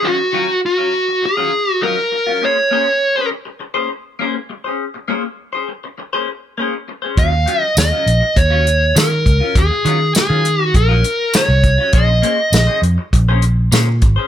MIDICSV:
0, 0, Header, 1, 6, 480
1, 0, Start_track
1, 0, Key_signature, -5, "minor"
1, 0, Tempo, 595238
1, 30, Time_signature, 4, 2, 24, 8
1, 11511, End_track
2, 0, Start_track
2, 0, Title_t, "Lead electric guitar"
2, 0, Program_c, 0, 29
2, 38, Note_on_c, 0, 66, 73
2, 481, Note_off_c, 0, 66, 0
2, 530, Note_on_c, 0, 66, 74
2, 1012, Note_on_c, 0, 68, 76
2, 1014, Note_off_c, 0, 66, 0
2, 1383, Note_off_c, 0, 68, 0
2, 1383, Note_on_c, 0, 66, 76
2, 1474, Note_off_c, 0, 66, 0
2, 1477, Note_on_c, 0, 70, 90
2, 1967, Note_off_c, 0, 70, 0
2, 1972, Note_on_c, 0, 73, 71
2, 2648, Note_off_c, 0, 73, 0
2, 5797, Note_on_c, 0, 77, 93
2, 6143, Note_off_c, 0, 77, 0
2, 6143, Note_on_c, 0, 75, 93
2, 6240, Note_off_c, 0, 75, 0
2, 6277, Note_on_c, 0, 75, 90
2, 6752, Note_on_c, 0, 73, 88
2, 6766, Note_off_c, 0, 75, 0
2, 7232, Note_off_c, 0, 73, 0
2, 7235, Note_on_c, 0, 70, 77
2, 7721, Note_on_c, 0, 68, 85
2, 7726, Note_off_c, 0, 70, 0
2, 8162, Note_off_c, 0, 68, 0
2, 8199, Note_on_c, 0, 68, 75
2, 8578, Note_off_c, 0, 68, 0
2, 8578, Note_on_c, 0, 66, 75
2, 8677, Note_off_c, 0, 66, 0
2, 8680, Note_on_c, 0, 70, 71
2, 9159, Note_on_c, 0, 73, 78
2, 9169, Note_off_c, 0, 70, 0
2, 9628, Note_off_c, 0, 73, 0
2, 9631, Note_on_c, 0, 75, 75
2, 10318, Note_off_c, 0, 75, 0
2, 11511, End_track
3, 0, Start_track
3, 0, Title_t, "Clean electric guitar"
3, 0, Program_c, 1, 27
3, 15, Note_on_c, 1, 51, 66
3, 25, Note_on_c, 1, 54, 72
3, 27, Note_on_c, 1, 61, 64
3, 35, Note_on_c, 1, 65, 65
3, 140, Note_off_c, 1, 65, 0
3, 143, Note_off_c, 1, 51, 0
3, 148, Note_off_c, 1, 54, 0
3, 149, Note_off_c, 1, 61, 0
3, 261, Note_on_c, 1, 51, 76
3, 269, Note_on_c, 1, 54, 81
3, 274, Note_on_c, 1, 61, 80
3, 276, Note_on_c, 1, 65, 87
3, 372, Note_off_c, 1, 65, 0
3, 380, Note_off_c, 1, 61, 0
3, 386, Note_off_c, 1, 51, 0
3, 386, Note_off_c, 1, 54, 0
3, 624, Note_on_c, 1, 65, 43
3, 635, Note_on_c, 1, 61, 38
3, 647, Note_on_c, 1, 54, 35
3, 742, Note_off_c, 1, 54, 0
3, 746, Note_off_c, 1, 61, 0
3, 746, Note_off_c, 1, 65, 0
3, 1104, Note_on_c, 1, 65, 71
3, 1109, Note_on_c, 1, 61, 67
3, 1114, Note_on_c, 1, 54, 54
3, 1120, Note_on_c, 1, 51, 57
3, 1211, Note_off_c, 1, 51, 0
3, 1217, Note_off_c, 1, 54, 0
3, 1219, Note_off_c, 1, 61, 0
3, 1223, Note_off_c, 1, 65, 0
3, 1462, Note_on_c, 1, 51, 54
3, 1471, Note_on_c, 1, 54, 64
3, 1480, Note_on_c, 1, 61, 62
3, 1488, Note_on_c, 1, 65, 69
3, 1582, Note_off_c, 1, 65, 0
3, 1586, Note_off_c, 1, 51, 0
3, 1590, Note_off_c, 1, 54, 0
3, 1591, Note_off_c, 1, 61, 0
3, 1827, Note_on_c, 1, 65, 59
3, 1841, Note_on_c, 1, 61, 53
3, 1851, Note_on_c, 1, 54, 38
3, 1942, Note_off_c, 1, 61, 0
3, 1943, Note_off_c, 1, 54, 0
3, 1946, Note_on_c, 1, 58, 59
3, 1948, Note_off_c, 1, 65, 0
3, 1952, Note_on_c, 1, 61, 72
3, 1960, Note_on_c, 1, 68, 75
3, 1967, Note_on_c, 1, 72, 83
3, 2059, Note_off_c, 1, 72, 0
3, 2065, Note_off_c, 1, 68, 0
3, 2068, Note_off_c, 1, 58, 0
3, 2071, Note_off_c, 1, 61, 0
3, 2184, Note_on_c, 1, 58, 77
3, 2194, Note_on_c, 1, 61, 81
3, 2198, Note_on_c, 1, 68, 83
3, 2201, Note_on_c, 1, 72, 92
3, 2295, Note_off_c, 1, 72, 0
3, 2305, Note_off_c, 1, 68, 0
3, 2307, Note_off_c, 1, 58, 0
3, 2309, Note_off_c, 1, 61, 0
3, 2546, Note_on_c, 1, 72, 45
3, 2557, Note_on_c, 1, 68, 45
3, 2567, Note_on_c, 1, 61, 42
3, 2661, Note_off_c, 1, 61, 0
3, 2666, Note_off_c, 1, 68, 0
3, 2667, Note_off_c, 1, 72, 0
3, 3017, Note_on_c, 1, 72, 82
3, 3022, Note_on_c, 1, 68, 74
3, 3027, Note_on_c, 1, 61, 63
3, 3033, Note_on_c, 1, 58, 62
3, 3128, Note_off_c, 1, 58, 0
3, 3136, Note_off_c, 1, 61, 0
3, 3141, Note_off_c, 1, 68, 0
3, 3142, Note_off_c, 1, 72, 0
3, 3380, Note_on_c, 1, 58, 70
3, 3390, Note_on_c, 1, 61, 70
3, 3397, Note_on_c, 1, 68, 72
3, 3406, Note_on_c, 1, 72, 70
3, 3504, Note_off_c, 1, 72, 0
3, 3505, Note_off_c, 1, 58, 0
3, 3509, Note_off_c, 1, 61, 0
3, 3511, Note_off_c, 1, 68, 0
3, 3744, Note_on_c, 1, 72, 53
3, 3760, Note_on_c, 1, 68, 50
3, 3771, Note_on_c, 1, 61, 46
3, 3890, Note_off_c, 1, 72, 0
3, 3897, Note_off_c, 1, 68, 0
3, 3903, Note_off_c, 1, 61, 0
3, 4097, Note_on_c, 1, 58, 88
3, 4105, Note_on_c, 1, 61, 89
3, 4110, Note_on_c, 1, 68, 102
3, 4117, Note_on_c, 1, 72, 87
3, 4207, Note_off_c, 1, 72, 0
3, 4214, Note_off_c, 1, 68, 0
3, 4221, Note_off_c, 1, 61, 0
3, 4223, Note_off_c, 1, 58, 0
3, 4456, Note_on_c, 1, 72, 51
3, 4474, Note_on_c, 1, 68, 46
3, 4485, Note_on_c, 1, 61, 38
3, 4576, Note_off_c, 1, 61, 0
3, 4581, Note_off_c, 1, 68, 0
3, 4581, Note_off_c, 1, 72, 0
3, 4943, Note_on_c, 1, 72, 74
3, 4952, Note_on_c, 1, 68, 68
3, 4956, Note_on_c, 1, 61, 59
3, 4960, Note_on_c, 1, 58, 67
3, 5054, Note_off_c, 1, 58, 0
3, 5060, Note_off_c, 1, 61, 0
3, 5065, Note_off_c, 1, 72, 0
3, 5066, Note_off_c, 1, 68, 0
3, 5303, Note_on_c, 1, 58, 69
3, 5315, Note_on_c, 1, 61, 68
3, 5322, Note_on_c, 1, 68, 67
3, 5329, Note_on_c, 1, 72, 64
3, 5425, Note_off_c, 1, 72, 0
3, 5426, Note_off_c, 1, 58, 0
3, 5432, Note_off_c, 1, 61, 0
3, 5433, Note_off_c, 1, 68, 0
3, 5661, Note_on_c, 1, 72, 52
3, 5675, Note_on_c, 1, 68, 37
3, 5689, Note_on_c, 1, 61, 43
3, 5782, Note_on_c, 1, 51, 65
3, 5784, Note_off_c, 1, 72, 0
3, 5785, Note_off_c, 1, 61, 0
3, 5788, Note_on_c, 1, 54, 65
3, 5791, Note_off_c, 1, 68, 0
3, 5794, Note_on_c, 1, 61, 68
3, 5798, Note_on_c, 1, 65, 74
3, 5891, Note_off_c, 1, 65, 0
3, 5898, Note_off_c, 1, 61, 0
3, 5905, Note_off_c, 1, 51, 0
3, 5905, Note_off_c, 1, 54, 0
3, 6016, Note_on_c, 1, 51, 81
3, 6026, Note_on_c, 1, 54, 76
3, 6032, Note_on_c, 1, 61, 76
3, 6035, Note_on_c, 1, 65, 98
3, 6137, Note_off_c, 1, 65, 0
3, 6142, Note_off_c, 1, 51, 0
3, 6147, Note_off_c, 1, 54, 0
3, 6147, Note_off_c, 1, 61, 0
3, 6386, Note_on_c, 1, 65, 48
3, 6398, Note_on_c, 1, 61, 39
3, 6410, Note_on_c, 1, 54, 35
3, 6506, Note_off_c, 1, 54, 0
3, 6506, Note_off_c, 1, 65, 0
3, 6508, Note_off_c, 1, 61, 0
3, 6858, Note_on_c, 1, 65, 54
3, 6865, Note_on_c, 1, 61, 58
3, 6872, Note_on_c, 1, 54, 59
3, 6878, Note_on_c, 1, 51, 50
3, 6971, Note_off_c, 1, 51, 0
3, 6978, Note_off_c, 1, 54, 0
3, 6981, Note_off_c, 1, 61, 0
3, 6982, Note_off_c, 1, 65, 0
3, 7219, Note_on_c, 1, 51, 55
3, 7226, Note_on_c, 1, 54, 65
3, 7235, Note_on_c, 1, 61, 60
3, 7244, Note_on_c, 1, 65, 67
3, 7326, Note_off_c, 1, 65, 0
3, 7331, Note_off_c, 1, 61, 0
3, 7341, Note_off_c, 1, 54, 0
3, 7344, Note_off_c, 1, 51, 0
3, 7583, Note_on_c, 1, 65, 48
3, 7597, Note_on_c, 1, 61, 41
3, 7604, Note_on_c, 1, 54, 37
3, 7729, Note_off_c, 1, 65, 0
3, 7736, Note_off_c, 1, 61, 0
3, 7740, Note_off_c, 1, 54, 0
3, 7939, Note_on_c, 1, 51, 73
3, 7946, Note_on_c, 1, 54, 85
3, 7956, Note_on_c, 1, 61, 86
3, 7960, Note_on_c, 1, 65, 89
3, 8049, Note_off_c, 1, 65, 0
3, 8059, Note_off_c, 1, 61, 0
3, 8064, Note_off_c, 1, 51, 0
3, 8065, Note_off_c, 1, 54, 0
3, 8301, Note_on_c, 1, 65, 41
3, 8312, Note_on_c, 1, 61, 41
3, 8326, Note_on_c, 1, 54, 35
3, 8419, Note_off_c, 1, 54, 0
3, 8420, Note_off_c, 1, 61, 0
3, 8424, Note_off_c, 1, 65, 0
3, 8778, Note_on_c, 1, 65, 66
3, 8786, Note_on_c, 1, 61, 57
3, 8794, Note_on_c, 1, 54, 59
3, 8798, Note_on_c, 1, 51, 54
3, 8893, Note_off_c, 1, 51, 0
3, 8896, Note_off_c, 1, 54, 0
3, 8901, Note_off_c, 1, 61, 0
3, 8903, Note_off_c, 1, 65, 0
3, 9141, Note_on_c, 1, 51, 60
3, 9151, Note_on_c, 1, 54, 52
3, 9159, Note_on_c, 1, 61, 67
3, 9164, Note_on_c, 1, 65, 61
3, 9255, Note_off_c, 1, 65, 0
3, 9260, Note_off_c, 1, 61, 0
3, 9265, Note_off_c, 1, 51, 0
3, 9265, Note_off_c, 1, 54, 0
3, 9501, Note_on_c, 1, 65, 52
3, 9518, Note_on_c, 1, 61, 45
3, 9529, Note_on_c, 1, 54, 41
3, 9617, Note_off_c, 1, 54, 0
3, 9620, Note_on_c, 1, 58, 62
3, 9621, Note_off_c, 1, 61, 0
3, 9625, Note_off_c, 1, 65, 0
3, 9630, Note_on_c, 1, 61, 65
3, 9638, Note_on_c, 1, 68, 69
3, 9639, Note_on_c, 1, 72, 74
3, 9739, Note_off_c, 1, 72, 0
3, 9743, Note_off_c, 1, 68, 0
3, 9745, Note_off_c, 1, 58, 0
3, 9750, Note_off_c, 1, 61, 0
3, 9855, Note_on_c, 1, 58, 82
3, 9865, Note_on_c, 1, 61, 72
3, 9868, Note_on_c, 1, 68, 87
3, 9874, Note_on_c, 1, 72, 93
3, 9967, Note_off_c, 1, 72, 0
3, 9974, Note_off_c, 1, 68, 0
3, 9981, Note_off_c, 1, 61, 0
3, 9983, Note_off_c, 1, 58, 0
3, 10217, Note_on_c, 1, 72, 48
3, 10232, Note_on_c, 1, 68, 43
3, 10241, Note_on_c, 1, 61, 45
3, 10337, Note_off_c, 1, 61, 0
3, 10343, Note_off_c, 1, 72, 0
3, 10346, Note_off_c, 1, 68, 0
3, 10713, Note_on_c, 1, 72, 73
3, 10718, Note_on_c, 1, 68, 70
3, 10726, Note_on_c, 1, 61, 64
3, 10729, Note_on_c, 1, 58, 65
3, 10820, Note_off_c, 1, 58, 0
3, 10825, Note_off_c, 1, 61, 0
3, 10832, Note_off_c, 1, 68, 0
3, 10832, Note_off_c, 1, 72, 0
3, 11061, Note_on_c, 1, 58, 70
3, 11070, Note_on_c, 1, 61, 72
3, 11081, Note_on_c, 1, 68, 72
3, 11085, Note_on_c, 1, 72, 78
3, 11183, Note_off_c, 1, 72, 0
3, 11187, Note_off_c, 1, 58, 0
3, 11190, Note_off_c, 1, 68, 0
3, 11191, Note_off_c, 1, 61, 0
3, 11419, Note_on_c, 1, 72, 54
3, 11433, Note_on_c, 1, 68, 43
3, 11444, Note_on_c, 1, 61, 49
3, 11511, Note_off_c, 1, 61, 0
3, 11511, Note_off_c, 1, 68, 0
3, 11511, Note_off_c, 1, 72, 0
3, 11511, End_track
4, 0, Start_track
4, 0, Title_t, "Fingered electric bass"
4, 0, Program_c, 2, 33
4, 5785, Note_on_c, 2, 39, 90
4, 6008, Note_off_c, 2, 39, 0
4, 6265, Note_on_c, 2, 39, 94
4, 6377, Note_off_c, 2, 39, 0
4, 6502, Note_on_c, 2, 34, 69
4, 6616, Note_off_c, 2, 34, 0
4, 6743, Note_on_c, 2, 39, 87
4, 7193, Note_off_c, 2, 39, 0
4, 7224, Note_on_c, 2, 51, 85
4, 7448, Note_off_c, 2, 51, 0
4, 7464, Note_on_c, 2, 37, 74
4, 7577, Note_off_c, 2, 37, 0
4, 7703, Note_on_c, 2, 39, 82
4, 7817, Note_off_c, 2, 39, 0
4, 7942, Note_on_c, 2, 51, 83
4, 8167, Note_off_c, 2, 51, 0
4, 8305, Note_on_c, 2, 51, 84
4, 8639, Note_off_c, 2, 51, 0
4, 8663, Note_on_c, 2, 34, 93
4, 8887, Note_off_c, 2, 34, 0
4, 9261, Note_on_c, 2, 36, 77
4, 9487, Note_off_c, 2, 36, 0
4, 9623, Note_on_c, 2, 34, 95
4, 9848, Note_off_c, 2, 34, 0
4, 10099, Note_on_c, 2, 34, 101
4, 10215, Note_off_c, 2, 34, 0
4, 10337, Note_on_c, 2, 41, 68
4, 10455, Note_off_c, 2, 41, 0
4, 10587, Note_on_c, 2, 34, 89
4, 11037, Note_off_c, 2, 34, 0
4, 11064, Note_on_c, 2, 46, 89
4, 11289, Note_off_c, 2, 46, 0
4, 11306, Note_on_c, 2, 32, 76
4, 11420, Note_off_c, 2, 32, 0
4, 11511, End_track
5, 0, Start_track
5, 0, Title_t, "Muted clean electric guitar strokes"
5, 150, Note_on_c, 9, 29, 41
5, 230, Note_off_c, 9, 29, 0
5, 382, Note_on_c, 9, 29, 39
5, 463, Note_off_c, 9, 29, 0
5, 749, Note_on_c, 9, 29, 38
5, 829, Note_off_c, 9, 29, 0
5, 868, Note_on_c, 9, 29, 41
5, 949, Note_off_c, 9, 29, 0
5, 985, Note_on_c, 9, 29, 38
5, 1066, Note_off_c, 9, 29, 0
5, 1220, Note_on_c, 9, 29, 36
5, 1301, Note_off_c, 9, 29, 0
5, 1591, Note_on_c, 9, 29, 41
5, 1672, Note_off_c, 9, 29, 0
5, 1707, Note_on_c, 9, 29, 41
5, 1788, Note_off_c, 9, 29, 0
5, 2069, Note_on_c, 9, 29, 39
5, 2149, Note_off_c, 9, 29, 0
5, 2305, Note_on_c, 9, 29, 38
5, 2385, Note_off_c, 9, 29, 0
5, 2665, Note_on_c, 9, 29, 43
5, 2746, Note_off_c, 9, 29, 0
5, 2785, Note_on_c, 9, 29, 46
5, 2866, Note_off_c, 9, 29, 0
5, 2899, Note_on_c, 9, 29, 34
5, 2979, Note_off_c, 9, 29, 0
5, 3138, Note_on_c, 9, 29, 37
5, 3219, Note_off_c, 9, 29, 0
5, 3514, Note_on_c, 9, 29, 48
5, 3594, Note_off_c, 9, 29, 0
5, 3624, Note_on_c, 9, 29, 41
5, 3705, Note_off_c, 9, 29, 0
5, 3986, Note_on_c, 9, 29, 43
5, 4066, Note_off_c, 9, 29, 0
5, 4217, Note_on_c, 9, 29, 46
5, 4298, Note_off_c, 9, 29, 0
5, 4581, Note_on_c, 9, 29, 40
5, 4662, Note_off_c, 9, 29, 0
5, 4707, Note_on_c, 9, 29, 46
5, 4788, Note_off_c, 9, 29, 0
5, 4821, Note_on_c, 9, 29, 39
5, 4901, Note_off_c, 9, 29, 0
5, 5064, Note_on_c, 9, 29, 38
5, 5144, Note_off_c, 9, 29, 0
5, 5434, Note_on_c, 9, 29, 42
5, 5515, Note_off_c, 9, 29, 0
5, 5548, Note_on_c, 9, 29, 39
5, 5629, Note_off_c, 9, 29, 0
5, 5901, Note_on_c, 9, 29, 43
5, 5982, Note_off_c, 9, 29, 0
5, 6147, Note_on_c, 9, 29, 35
5, 6227, Note_off_c, 9, 29, 0
5, 6509, Note_on_c, 9, 29, 39
5, 6590, Note_off_c, 9, 29, 0
5, 6619, Note_on_c, 9, 29, 41
5, 6699, Note_off_c, 9, 29, 0
5, 6749, Note_on_c, 9, 29, 34
5, 6830, Note_off_c, 9, 29, 0
5, 6981, Note_on_c, 9, 29, 36
5, 7061, Note_off_c, 9, 29, 0
5, 7336, Note_on_c, 9, 29, 42
5, 7417, Note_off_c, 9, 29, 0
5, 7461, Note_on_c, 9, 29, 37
5, 7542, Note_off_c, 9, 29, 0
5, 7825, Note_on_c, 9, 29, 49
5, 7906, Note_off_c, 9, 29, 0
5, 8058, Note_on_c, 9, 29, 43
5, 8139, Note_off_c, 9, 29, 0
5, 8423, Note_on_c, 9, 29, 37
5, 8504, Note_off_c, 9, 29, 0
5, 8542, Note_on_c, 9, 29, 42
5, 8623, Note_off_c, 9, 29, 0
5, 8663, Note_on_c, 9, 29, 34
5, 8743, Note_off_c, 9, 29, 0
5, 8903, Note_on_c, 9, 29, 35
5, 8983, Note_off_c, 9, 29, 0
5, 9265, Note_on_c, 9, 29, 41
5, 9345, Note_off_c, 9, 29, 0
5, 9381, Note_on_c, 9, 29, 38
5, 9462, Note_off_c, 9, 29, 0
5, 9749, Note_on_c, 9, 29, 42
5, 9829, Note_off_c, 9, 29, 0
5, 9977, Note_on_c, 9, 29, 32
5, 10057, Note_off_c, 9, 29, 0
5, 10342, Note_on_c, 9, 29, 46
5, 10422, Note_off_c, 9, 29, 0
5, 10467, Note_on_c, 9, 29, 43
5, 10547, Note_off_c, 9, 29, 0
5, 10592, Note_on_c, 9, 29, 38
5, 10673, Note_off_c, 9, 29, 0
5, 10830, Note_on_c, 9, 29, 43
5, 10911, Note_off_c, 9, 29, 0
5, 11192, Note_on_c, 9, 29, 39
5, 11273, Note_off_c, 9, 29, 0
5, 11303, Note_on_c, 9, 29, 38
5, 11383, Note_off_c, 9, 29, 0
5, 11511, End_track
6, 0, Start_track
6, 0, Title_t, "Drums"
6, 5785, Note_on_c, 9, 42, 70
6, 5786, Note_on_c, 9, 36, 110
6, 5865, Note_off_c, 9, 42, 0
6, 5867, Note_off_c, 9, 36, 0
6, 6026, Note_on_c, 9, 42, 51
6, 6107, Note_off_c, 9, 42, 0
6, 6265, Note_on_c, 9, 42, 74
6, 6265, Note_on_c, 9, 54, 99
6, 6276, Note_on_c, 9, 38, 103
6, 6345, Note_off_c, 9, 42, 0
6, 6345, Note_off_c, 9, 54, 0
6, 6357, Note_off_c, 9, 38, 0
6, 6510, Note_on_c, 9, 42, 57
6, 6591, Note_off_c, 9, 42, 0
6, 6745, Note_on_c, 9, 36, 81
6, 6746, Note_on_c, 9, 42, 80
6, 6826, Note_off_c, 9, 36, 0
6, 6827, Note_off_c, 9, 42, 0
6, 6990, Note_on_c, 9, 42, 56
6, 7071, Note_off_c, 9, 42, 0
6, 7229, Note_on_c, 9, 42, 74
6, 7229, Note_on_c, 9, 54, 113
6, 7241, Note_on_c, 9, 38, 103
6, 7310, Note_off_c, 9, 42, 0
6, 7310, Note_off_c, 9, 54, 0
6, 7321, Note_off_c, 9, 38, 0
6, 7467, Note_on_c, 9, 36, 74
6, 7470, Note_on_c, 9, 42, 54
6, 7548, Note_off_c, 9, 36, 0
6, 7551, Note_off_c, 9, 42, 0
6, 7705, Note_on_c, 9, 36, 102
6, 7705, Note_on_c, 9, 42, 84
6, 7786, Note_off_c, 9, 36, 0
6, 7786, Note_off_c, 9, 42, 0
6, 7947, Note_on_c, 9, 42, 57
6, 8027, Note_off_c, 9, 42, 0
6, 8183, Note_on_c, 9, 42, 86
6, 8183, Note_on_c, 9, 54, 96
6, 8195, Note_on_c, 9, 38, 95
6, 8264, Note_off_c, 9, 42, 0
6, 8264, Note_off_c, 9, 54, 0
6, 8275, Note_off_c, 9, 38, 0
6, 8426, Note_on_c, 9, 42, 58
6, 8507, Note_off_c, 9, 42, 0
6, 8664, Note_on_c, 9, 36, 77
6, 8665, Note_on_c, 9, 42, 75
6, 8745, Note_off_c, 9, 36, 0
6, 8745, Note_off_c, 9, 42, 0
6, 8904, Note_on_c, 9, 42, 57
6, 8984, Note_off_c, 9, 42, 0
6, 9140, Note_on_c, 9, 42, 76
6, 9140, Note_on_c, 9, 54, 105
6, 9152, Note_on_c, 9, 38, 109
6, 9221, Note_off_c, 9, 42, 0
6, 9221, Note_off_c, 9, 54, 0
6, 9232, Note_off_c, 9, 38, 0
6, 9382, Note_on_c, 9, 42, 56
6, 9384, Note_on_c, 9, 36, 75
6, 9463, Note_off_c, 9, 42, 0
6, 9464, Note_off_c, 9, 36, 0
6, 9617, Note_on_c, 9, 42, 74
6, 9623, Note_on_c, 9, 36, 104
6, 9698, Note_off_c, 9, 42, 0
6, 9704, Note_off_c, 9, 36, 0
6, 9863, Note_on_c, 9, 42, 59
6, 9944, Note_off_c, 9, 42, 0
6, 10102, Note_on_c, 9, 42, 67
6, 10102, Note_on_c, 9, 54, 105
6, 10113, Note_on_c, 9, 38, 111
6, 10183, Note_off_c, 9, 42, 0
6, 10183, Note_off_c, 9, 54, 0
6, 10194, Note_off_c, 9, 38, 0
6, 10348, Note_on_c, 9, 42, 55
6, 10429, Note_off_c, 9, 42, 0
6, 10588, Note_on_c, 9, 36, 77
6, 10590, Note_on_c, 9, 42, 76
6, 10668, Note_off_c, 9, 36, 0
6, 10670, Note_off_c, 9, 42, 0
6, 10823, Note_on_c, 9, 42, 53
6, 10904, Note_off_c, 9, 42, 0
6, 11066, Note_on_c, 9, 42, 77
6, 11066, Note_on_c, 9, 54, 107
6, 11077, Note_on_c, 9, 38, 102
6, 11146, Note_off_c, 9, 42, 0
6, 11146, Note_off_c, 9, 54, 0
6, 11158, Note_off_c, 9, 38, 0
6, 11303, Note_on_c, 9, 42, 56
6, 11307, Note_on_c, 9, 36, 76
6, 11383, Note_off_c, 9, 42, 0
6, 11388, Note_off_c, 9, 36, 0
6, 11511, End_track
0, 0, End_of_file